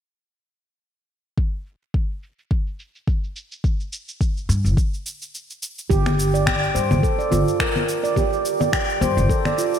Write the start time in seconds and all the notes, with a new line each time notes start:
1.38 kick
1.54 shaker
1.66 shaker
1.82 shaker
1.94 kick
2.10 shaker
2.23 shaker
2.39 shaker
2.51 kick, shaker
2.67 shaker
2.79 shaker
2.95 shaker
3.07 kick, shaker
3.24 shaker
3.36 shaker
3.52 shaker
3.64 kick, shaker
3.80 shaker
3.93 shaker
4.09 shaker
4.21 kick, shaker
4.37 shaker
4.49 G2, shaker
4.64 G1, shaker
4.77 kick, shaker
4.94 shaker
5.06 shaker
5.22 shaker
5.35 shaker
5.50 shaker
5.63 shaker
5.79 shaker
5.90 G1 G4, kick, shaker
6.06 finger snap, low conga, shaker
6.19 shaker
6.34 D5, shaker
6.46 G5, finger snap, kick, low conga, shaker
6.63 shaker
6.75 G2 C5, shaker
6.91 G1, low conga, shaker
7.03 A4, kick, shaker
7.19 D5, shaker
7.31 G1 F4, low conga, shaker
7.48 shaker
7.60 A#4, finger snap, kick, shaker
7.76 low conga, shaker
7.89 shaker
8.04 D5, shaker
8.16 G4, kick, low conga, shaker
8.33 shaker
8.45 shaker
8.60 D5, low conga, shaker
8.73 G5, finger snap, kick, shaker
8.90 shaker
9.01 G2 C5, low conga, shaker
9.17 G1, shaker
9.29 A4, kick, shaker
9.45 D5, finger snap, low conga, shaker
9.58 F4, shaker
9.74 shaker